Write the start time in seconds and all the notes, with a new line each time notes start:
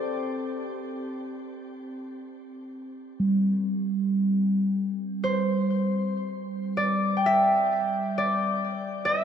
Already playing: C4 G4 A4 C5 D5
3.20 G3
5.24 C5
6.77 D5
7.17 G5
7.26 E5
8.18 D5
9.05 E5